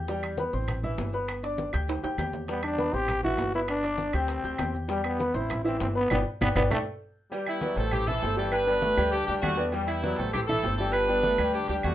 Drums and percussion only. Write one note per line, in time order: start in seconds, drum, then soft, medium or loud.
0.08 high bongo medium
0.08 high conga soft
0.08 high timbale medium
0.08 maracas medium
0.23 high bongo soft
0.23 high conga soft
0.23 high timbale loud
0.23 claves medium
0.38 high bongo medium
0.38 high conga loud
0.38 low timbale medium
0.38 maracas medium
0.53 high conga soft
0.53 maracas soft
0.68 high bongo medium
0.68 high conga soft
0.68 low conga medium
0.68 high timbale medium
0.68 claves medium
0.68 maracas medium
0.83 high bongo soft
0.83 high conga soft
0.83 low conga medium
0.98 high bongo medium
0.98 low bongo medium
0.98 high timbale medium
0.98 low timbale medium
0.98 maracas medium
1.13 high bongo soft
1.13 high conga soft
1.13 maracas soft
1.28 high bongo medium
1.28 high conga soft
1.28 high timbale medium
1.28 claves medium
1.28 maracas medium
1.43 high bongo soft
1.43 high conga soft
1.43 high timbale medium
1.43 maracas medium
1.58 high bongo medium
1.58 high conga loud
1.58 low timbale medium
1.58 maracas medium
1.73 high timbale medium
1.73 claves medium
1.73 maracas soft
1.88 high bongo medium
1.88 high conga soft
1.88 high timbale medium
1.88 maracas medium
2.03 high conga soft
2.03 high timbale medium
2.18 high bongo medium
2.18 low bongo medium
2.18 high conga medium
2.18 low timbale medium
2.18 claves medium
2.18 maracas medium
2.33 high bongo soft
2.33 high conga medium
2.33 low timbale medium
2.33 maracas soft
2.48 high bongo medium
2.48 high conga soft
2.48 high timbale medium
2.48 maracas medium
2.63 high conga soft
2.63 high timbale loud
2.63 claves medium
2.78 high bongo medium
2.78 high conga loud
2.78 low timbale medium
2.78 maracas medium
2.94 maracas soft
3.08 high bongo medium
3.08 high conga soft
3.08 low conga medium
3.08 high timbale loud
3.08 claves medium
3.08 maracas medium
3.23 high bongo soft
3.23 high conga soft
3.23 low conga medium
3.38 high bongo medium
3.38 low bongo medium
3.38 high conga soft
3.38 high timbale medium
3.38 low timbale medium
3.38 maracas medium
3.53 high bongo soft
3.53 high conga soft
3.53 maracas soft
3.68 high bongo medium
3.68 high conga soft
3.68 high timbale medium
3.68 claves medium
3.68 maracas medium
3.83 high bongo soft
3.83 high conga soft
3.83 high timbale medium
3.83 maracas medium
3.98 high bongo medium
3.98 high conga loud
3.98 low timbale medium
3.98 maracas medium
4.13 high bongo soft
4.13 high conga soft
4.13 high timbale medium
4.13 claves medium
4.13 maracas soft
4.28 high bongo medium
4.28 high conga soft
4.28 high timbale medium
4.28 maracas medium
4.44 high conga soft
4.44 maracas medium
4.58 high bongo medium
4.58 low bongo medium
4.58 high conga medium
4.58 high timbale medium
4.58 low timbale medium
4.58 claves medium
4.58 maracas medium
4.74 high bongo soft
4.74 high conga medium
4.74 maracas soft
4.89 high bongo medium
4.89 high conga soft
4.89 high timbale medium
4.89 maracas medium
5.04 high conga soft
5.04 high timbale medium
5.04 claves medium
5.19 high bongo medium
5.19 high conga loud
5.19 low timbale medium
5.19 maracas medium
5.35 maracas soft
5.50 high bongo medium
5.50 high conga soft
5.50 low conga medium
5.50 high timbale loud
5.50 claves medium
5.50 maracas medium
5.65 high bongo soft
5.65 high conga soft
5.65 maracas medium
5.80 high bongo medium
5.80 low bongo medium
5.80 high conga soft
5.80 high timbale medium
5.80 low timbale medium
5.80 maracas medium
5.96 high bongo soft
5.96 high conga soft
5.96 maracas soft
6.10 low bongo loud
6.10 low conga loud
6.10 high timbale loud
6.10 claves loud
6.10 maracas medium
6.41 low bongo loud
6.41 low conga loud
6.41 high timbale loud
6.41 claves medium
6.41 maracas medium
6.56 low bongo loud
6.56 low conga loud
6.56 high timbale loud
6.56 claves loud
6.56 maracas loud
6.71 low bongo loud
6.71 low conga loud
6.71 high timbale loud
6.71 claves medium
6.71 maracas medium
7.32 cowbell loud
7.32 high conga soft
7.32 low agogo medium
7.32 maracas medium
7.47 high conga soft
7.47 low agogo loud
7.47 claves medium
7.61 cowbell medium
7.61 high conga loud
7.61 low timbale medium
7.61 maracas medium
7.77 cowbell medium
7.77 low agogo medium
7.77 maracas soft
7.91 cowbell loud
7.91 high conga soft
7.91 low conga medium
7.91 low agogo loud
7.91 claves medium
7.91 maracas medium
8.08 high conga soft
8.08 low conga medium
8.22 cowbell medium
8.22 high conga soft
8.22 low timbale medium
8.22 low agogo medium
8.22 maracas medium
8.37 high conga soft
8.37 maracas soft
8.52 cowbell loud
8.52 high conga soft
8.52 low agogo loud
8.52 claves medium
8.52 maracas medium
8.67 high conga soft
8.67 low agogo medium
8.82 cowbell medium
8.82 high conga loud
8.82 low timbale medium
8.82 maracas medium
8.97 cowbell medium
8.97 high conga soft
8.97 low agogo loud
8.97 claves medium
8.97 maracas soft
9.12 cowbell loud
9.12 high conga soft
9.12 low agogo medium
9.12 maracas medium
9.28 high conga soft
9.28 maracas medium
9.42 cowbell medium
9.42 high conga medium
9.42 low timbale medium
9.42 low agogo loud
9.42 claves medium
9.42 maracas medium
9.57 low agogo medium
9.57 maracas soft
9.72 cowbell loud
9.72 high conga soft
9.72 low agogo medium
9.72 maracas medium
9.88 high conga soft
9.88 low agogo loud
9.88 claves medium
9.88 maracas medium
10.03 cowbell medium
10.03 high conga loud
10.03 low timbale medium
10.03 maracas medium
10.18 cowbell medium
10.18 high conga soft
10.18 low agogo medium
10.18 maracas soft
10.33 cowbell loud
10.33 high conga soft
10.33 low conga loud
10.33 low agogo loud
10.33 claves medium
10.33 maracas medium
10.49 high conga soft
10.49 low conga medium
10.63 cowbell medium
10.63 high conga soft
10.63 low timbale medium
10.63 low agogo medium
10.63 maracas medium
10.79 high conga soft
10.79 maracas soft
10.93 cowbell loud
10.93 high conga soft
10.93 low agogo medium
10.93 claves medium
10.93 maracas medium
11.08 high conga soft
11.08 low agogo medium
11.08 maracas medium
11.23 cowbell medium
11.23 high conga loud
11.23 low timbale medium
11.23 maracas medium
11.38 cowbell medium
11.38 low agogo loud
11.38 claves medium
11.38 maracas soft
11.53 cowbell loud
11.53 high conga soft
11.53 low agogo medium
11.53 maracas medium
11.70 high conga soft
11.70 maracas medium
11.83 cowbell medium
11.83 high conga medium
11.83 low timbale medium
11.83 low agogo loud
11.83 claves medium
11.83 maracas medium